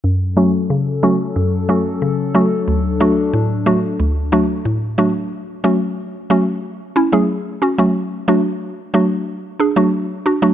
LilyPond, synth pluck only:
\new Staff \with { instrumentName = "Synth pluck" } { \time 4/4 \key fis \minor \tempo 4 = 91 << { r8 <fis a cis' fis'>16 r8. <fis a cis' fis'>16 r8. <fis a cis' fis'>16 r8. <fis a cis' fis'>16 r16 | r8 <fis a d' fis'>16 r8. <fis a d' fis'>16 r8. <fis a d' fis'>16 r8. <fis a d' fis'>16 r16 | r8 <fis a cis' fis'>16 r8. <fis a cis' fis'>16 r8. <cis' e'>16 <fis a cis' gis'>16 r8 <cis' fis'>16 <fis a cis' fis'>16 | r8 <fis a d' fis'>16 r8. <fis a d' fis'>16 r8. <d' gis'>16 <fis a d' fis'>16 r8 <d' fis'>16 <fis a d' fis'>16 | } \\ { fis,4 cis4 fis,4 cis4 | d,4 a,4 d,4 a,4 | r1 | r1 | } >> }